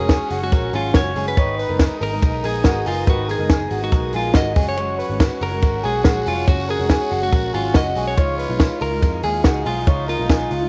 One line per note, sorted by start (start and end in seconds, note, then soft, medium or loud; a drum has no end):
0.00 0.17 F1 medium
0.00 0.43 G#3 soft
0.00 0.40 C#4 medium
0.00 1.33 C#4 loud
0.00 0.39 F#4 medium
0.00 0.43 G#4 medium
0.00 8.14 G#4 medium
0.00 1.33 C#5 medium
0.00 1.34 F#5 medium
0.00 1.34 C#6 loud
0.09 0.31 G#4 medium
0.09 kick loud
0.09 snare loud
0.09 hi-hat pedal medium
0.09 ride medium
0.09 tambourine loud
0.30 0.52 F#1 loud
0.30 0.52 F#4 medium
0.30 open hi-hat medium
0.40 0.72 G#3 soft
0.40 0.73 C#4 medium
0.40 0.73 F#4 medium
0.40 0.75 F#4 medium
0.52 0.70 A#1 medium
0.52 0.73 A#4 medium
0.52 kick loud
0.52 hi-hat pedal medium
0.52 ride medium
0.52 tambourine medium
0.72 0.91 G#1 loud
0.72 0.92 F#3 medium
0.72 0.93 G#3 medium
0.72 0.94 C#4 medium
0.72 0.96 F4 medium
0.72 0.95 F#4 medium
0.72 0.95 G#4 medium
0.72 open hi-hat medium
0.72 tambourine soft
0.93 1.13 F#1 medium
0.93 1.13 F#3 medium
0.93 1.15 G#3 medium
0.93 1.15 C#4 medium
0.93 1.16 F#4 medium
0.93 1.28 C#5 medium
0.93 kick loud
0.93 snare loud
0.93 hi-hat pedal medium
0.93 ride medium
0.93 tambourine loud
1.15 1.34 F#1 medium
1.15 1.36 F#3 medium
1.15 1.36 G#3 medium
1.15 1.37 C#4 medium
1.15 1.38 F#4 medium
1.15 1.37 G#4 medium
1.15 open hi-hat medium
1.15 tambourine soft
1.28 1.77 B4 medium
1.37 1.64 G#1 loud
1.37 1.69 G#2 medium
1.37 1.69 D#3 medium
1.37 1.69 G#3 medium
1.37 4.53 B3 medium
1.37 1.69 B3 medium
1.37 4.26 D#4 loud
1.37 1.69 D#4 medium
1.37 1.59 C#5 loud
1.37 4.53 A#5 medium
1.37 4.53 D#6 medium
1.37 kick loud
1.37 hi-hat pedal medium
1.37 ride medium
1.37 tambourine soft
1.59 1.99 B4 medium
1.59 open hi-hat medium
1.59 tambourine medium
1.69 1.87 F#1 medium
1.69 2.14 G#3 soft
1.69 2.12 B3 medium
1.69 2.11 D#4 medium
1.69 2.10 A#4 medium
1.79 kick loud
1.79 snare loud
1.79 hi-hat pedal medium
1.79 ride medium
1.79 tambourine loud
2.01 2.19 G#1 loud
2.01 2.43 A#4 medium
2.01 2.46 A#4 loud
2.01 open hi-hat medium
2.11 2.42 G#3 soft
2.11 2.43 B3 soft
2.11 2.44 D#4 medium
2.11 2.43 A#4 medium
2.22 2.40 B1 loud
2.22 kick loud
2.22 hi-hat pedal medium
2.22 ride medium
2.22 tambourine medium
2.43 2.62 A#1 medium
2.43 2.63 G#3 medium
2.43 2.64 B3 medium
2.43 2.66 D#4 medium
2.43 2.65 G#4 medium
2.43 2.84 G#4 medium
2.43 2.66 A#4 medium
2.43 open hi-hat medium
2.43 tambourine medium
2.64 2.83 G#1 medium
2.64 2.84 G#3 medium
2.64 2.85 B3 medium
2.64 2.86 D#4 medium
2.64 2.86 F#4 medium
2.64 2.86 A#4 medium
2.64 kick loud
2.64 snare loud
2.64 hi-hat pedal medium
2.64 ride medium
2.64 tambourine loud
2.85 3.04 F#1 medium
2.85 3.06 G#3 medium
2.85 3.06 B3 medium
2.85 3.07 D#4 medium
2.85 3.09 F4 medium
2.85 3.07 G#4 medium
2.85 3.07 A#4 medium
2.85 open hi-hat medium
2.85 tambourine medium
3.06 3.34 G#1 loud
3.06 3.39 G#2 medium
3.06 3.39 D#3 medium
3.06 3.39 G#3 medium
3.06 3.39 B3 medium
3.06 3.38 D#4 medium
3.06 3.30 F#4 medium
3.06 3.37 A#4 medium
3.06 3.28 B4 medium
3.06 kick loud
3.06 hi-hat pedal medium
3.06 ride medium
3.29 3.83 G#4 medium
3.29 3.50 A#4 medium
3.29 open hi-hat medium
3.29 tambourine medium
3.38 3.66 F#1 medium
3.38 3.83 G#3 soft
3.38 3.82 B3 medium
3.38 3.81 D#4 medium
3.38 3.80 A#4 medium
3.49 3.71 G#4 medium
3.49 kick loud
3.49 snare loud
3.49 hi-hat pedal medium
3.49 ride medium
3.49 tambourine loud
3.70 3.89 G#1 loud
3.70 3.92 F#4 medium
3.70 open hi-hat medium
3.70 tambourine soft
3.81 4.12 G#3 soft
3.81 4.13 B3 soft
3.81 4.14 D#4 soft
3.81 4.12 F#4 medium
3.81 4.13 A#4 medium
3.92 4.10 B1 medium
3.92 4.14 A#4 medium
3.92 kick loud
3.92 hi-hat pedal medium
3.92 ride medium
3.92 tambourine medium
4.13 4.32 A#1 loud
4.13 4.33 G#3 medium
4.13 4.34 B3 medium
4.13 4.35 D#4 medium
4.13 4.37 F4 medium
4.13 4.35 G#4 medium
4.13 4.36 A#4 medium
4.13 open hi-hat medium
4.13 tambourine medium
4.34 4.56 G#1 medium
4.34 4.55 G#3 medium
4.34 4.56 B3 medium
4.34 4.57 D#4 medium
4.34 4.56 F#4 medium
4.34 4.57 A#4 medium
4.34 4.68 D#5 loud
4.34 kick loud
4.34 snare loud
4.34 hi-hat pedal medium
4.34 ride medium
4.34 tambourine loud
4.56 5.01 F#1 medium
4.56 4.76 F#3 medium
4.56 4.77 G#3 medium
4.56 4.77 C#4 medium
4.56 8.19 F#4 loud
4.56 4.78 F#4 medium
4.56 4.77 G#4 medium
4.56 8.14 C#5 medium
4.56 8.14 F#5 medium
4.56 8.14 C#6 medium
4.56 kick loud
4.56 open hi-hat medium
4.56 tambourine medium
4.69 5.17 C#5 medium
4.77 5.09 F#3 medium
4.77 5.10 G#3 medium
4.77 5.09 C#4 medium
4.77 5.08 F#4 medium
4.77 4.98 C#5 loud
4.77 hi-hat pedal medium
4.77 ride medium
4.77 tambourine soft
4.99 5.41 B4 medium
4.99 open hi-hat medium
4.99 tambourine medium
5.09 5.28 G#1 medium
5.09 5.54 G#3 soft
5.09 5.52 C#4 medium
5.09 5.50 F#4 medium
5.20 kick loud
5.20 snare loud
5.20 hi-hat pedal medium
5.20 ride medium
5.20 tambourine loud
5.41 5.63 F#1 loud
5.41 5.81 A#4 medium
5.41 5.86 A#4 loud
5.41 open hi-hat medium
5.41 tambourine soft
5.51 5.83 G#3 soft
5.51 5.84 C#4 medium
5.51 5.83 F#4 soft
5.62 5.81 G#1 medium
5.62 kick loud
5.62 hi-hat pedal medium
5.62 ride medium
5.62 tambourine medium
5.83 6.02 B1 medium
5.83 6.03 F#3 medium
5.83 6.04 G#3 medium
5.83 6.05 C#4 medium
5.83 6.06 F#4 medium
5.83 6.04 G#4 medium
5.83 6.28 G#4 medium
5.83 open hi-hat medium
5.83 tambourine soft
6.04 6.23 A#1 medium
6.04 6.24 F#3 medium
6.04 6.25 G#3 medium
6.04 6.26 C#4 medium
6.04 6.26 F#4 medium
6.04 6.27 F#4 medium
6.04 kick loud
6.04 snare loud
6.04 hi-hat pedal medium
6.04 ride medium
6.04 tambourine loud
6.26 6.44 F1 medium
6.26 6.46 F#3 medium
6.26 6.47 G#3 medium
6.26 6.47 C#4 medium
6.26 6.49 F4 medium
6.26 6.48 F#4 medium
6.26 6.47 G#4 medium
6.26 open hi-hat medium
6.26 tambourine medium
6.47 6.75 F#1 loud
6.47 6.79 F#3 medium
6.47 6.80 G#3 medium
6.47 6.79 C#4 medium
6.47 6.78 F#4 medium
6.47 6.70 F#4 medium
6.47 6.68 C#5 medium
6.47 kick loud
6.47 hi-hat pedal medium
6.47 ride medium
6.47 tambourine soft
6.69 7.23 G#4 loud
6.69 6.90 A#4 medium
6.69 open hi-hat medium
6.69 tambourine medium
6.79 6.97 F1 medium
6.79 7.24 G#3 soft
6.79 7.23 C#4 medium
6.79 7.21 F#4 medium
6.90 7.11 G#4 medium
6.90 kick loud
6.90 snare loud
6.90 hi-hat pedal medium
6.90 ride medium
6.90 tambourine loud
7.11 7.30 F#1 loud
7.11 7.32 F#4 medium
7.11 open hi-hat medium
7.22 7.53 G#3 soft
7.22 7.53 C#4 medium
7.22 7.54 F#4 medium
7.32 7.51 A#1 medium
7.32 7.54 A#4 medium
7.32 kick loud
7.32 hi-hat pedal medium
7.32 ride medium
7.32 tambourine medium
7.53 7.72 G#1 medium
7.53 7.73 F#3 medium
7.53 7.74 G#3 medium
7.53 7.75 C#4 medium
7.53 7.76 F4 medium
7.53 7.75 F#4 medium
7.53 7.75 G#4 medium
7.53 open hi-hat medium
7.53 tambourine medium
7.74 7.93 F#1 medium
7.74 7.94 F#3 medium
7.74 7.95 G#3 medium
7.74 7.96 C#4 medium
7.74 7.96 F#4 medium
7.74 8.07 D#5 medium
7.74 kick loud
7.74 snare loud
7.74 hi-hat pedal medium
7.74 ride medium
7.74 tambourine medium
7.95 8.18 B1 medium
7.95 8.17 F#3 medium
7.95 8.16 G#3 medium
7.95 8.17 C#4 medium
7.95 8.18 F#4 medium
7.95 8.17 G#4 medium
7.95 open hi-hat medium
7.95 tambourine medium
8.08 8.82 C#5 medium
8.17 8.45 C#2 loud
8.17 8.49 C#3 medium
8.17 8.49 F3 medium
8.17 8.50 G#3 medium
8.17 8.49 D#4 medium
8.17 9.18 F4 loud
8.17 8.47 F4 medium
8.17 10.69 G#4 medium
8.17 8.38 C#5 loud
8.17 10.69 D#5 medium
8.17 10.69 F5 medium
8.17 10.69 C#6 medium
8.17 kick loud
8.17 hi-hat pedal medium
8.17 ride medium
8.17 tambourine soft
8.39 8.79 B4 medium
8.39 open hi-hat medium
8.39 tambourine medium
8.48 8.68 B1 medium
8.48 8.93 G#3 soft
8.48 8.91 D#4 medium
8.48 8.90 F4 medium
8.60 kick loud
8.60 snare loud
8.60 hi-hat pedal medium
8.60 ride medium
8.60 tambourine loud
8.81 8.99 C#2 loud
8.81 9.21 A#4 medium
8.81 9.23 A#4 loud
8.81 open hi-hat medium
8.91 9.23 G#3 soft
8.91 9.23 D#4 medium
8.91 9.23 F4 medium
9.02 9.21 F2 medium
9.02 kick loud
9.02 hi-hat pedal medium
9.02 ride medium
9.02 tambourine medium
9.23 9.42 D#2 loud
9.23 9.43 F3 medium
9.23 9.44 G#3 medium
9.23 9.45 D#4 medium
9.23 9.46 F4 medium
9.23 9.68 G#4 medium
9.23 9.44 G#4 medium
9.23 open hi-hat medium
9.23 tambourine medium
9.44 9.63 C#2 medium
9.44 9.64 F3 medium
9.44 9.65 G#3 medium
9.44 10.68 D#4 loud
9.44 9.66 D#4 medium
9.44 9.67 F4 medium
9.44 9.65 F#4 medium
9.44 kick loud
9.44 snare loud
9.44 hi-hat pedal medium
9.44 ride medium
9.44 tambourine loud
9.65 9.84 B1 medium
9.65 9.86 F3 medium
9.65 9.86 G#3 medium
9.65 9.87 D#4 medium
9.65 10.08 F4 medium
9.65 9.87 F4 medium
9.65 9.87 G#4 medium
9.65 open hi-hat medium
9.65 tambourine soft
9.87 10.14 C#2 loud
9.87 10.19 C#3 medium
9.87 10.19 F3 medium
9.87 10.19 G#3 medium
9.87 10.18 D#4 medium
9.87 10.17 F4 medium
9.87 10.08 C#5 loud
9.87 kick loud
9.87 hi-hat pedal medium
9.87 ride medium
10.08 10.69 F4 medium
10.08 10.29 A#4 medium
10.08 open hi-hat medium
10.08 tambourine medium
10.18 10.46 B1 medium
10.18 10.63 G#3 soft
10.18 10.61 D#4 medium
10.18 10.60 F4 medium
10.29 10.51 G#4 medium
10.29 kick loud
10.29 snare loud
10.29 hi-hat pedal medium
10.29 ride medium
10.29 tambourine loud
10.51 10.69 C#2 medium
10.51 10.69 F4 medium
10.51 open hi-hat medium
10.51 tambourine soft
10.61 10.69 G#3 soft
10.61 10.69 D#4 medium
10.61 10.69 F4 medium